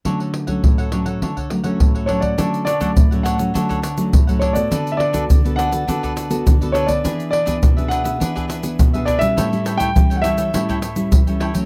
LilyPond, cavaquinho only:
\new Staff \with { instrumentName = "Cavaquinho" } { \time 4/4 \key d \major \tempo 4 = 103 <d' a' cis'' fis''>16 <a' cis'' fis''>16 r16 <a' cis'' fis''>8 <a' cis'' fis''>16 <d' a' cis'' fis''>16 <a' cis'' fis''>16 <d' a' cis'' fis''>16 <a' cis'' fis''>16 r16 <a' cis'' fis''>8 <a' cis'' fis''>16 <d' a' cis'' fis''>16 <a' cis'' fis''>16 | <d' a' cis'' fis''>8 <d' a' cis'' fis''>16 <d' a' cis'' fis''>16 r16 <a' cis'' fis''>16 <d' a' cis'' fis''>16 <a' cis'' fis''>16 <d' a' cis'' fis''>16 <d' a' cis'' fis''>16 <d' a' cis'' fis''>8. <a' cis'' fis''>16 <d' a' cis'' fis''>16 <a' cis'' fis''>16 | <d' a' b' d''>8 <d' a' b' d''>16 <d' a' b' d''>16 r16 <a' b' d''>16 <d' a' b' d''>16 <a' b' d''>16 <d' a' b' d''>16 <d' a' b' d''>16 <d' a' b' d''>8. <a' b' d''>16 <d' a' b' d''>16 <a' b' d''>16 | <d' gis' b' e''>8 <d' gis' b' e''>16 <d' gis' b' e''>16 r16 <gis' b' e''>16 <d' gis' b' e''>16 <gis' b' e''>16 <d' gis' b' e''>16 <d' gis' b' e''>16 <d' gis' b' e''>8. <gis' b' e''>16 <d' gis' b' e''>16 <gis' b' e''>16 |
<e' a' cis'' g''>8 <e' a' cis'' g''>16 <e' a' cis'' g''>16 r16 <a' cis'' g''>16 <e' a' cis'' g''>16 <a' cis'' g''>16 <e' a' cis'' g''>16 <e' a' cis'' g''>16 <e' a' cis'' g''>8. <a' cis'' g''>16 <e' a' cis'' g''>16 <a' cis'' g''>16 | }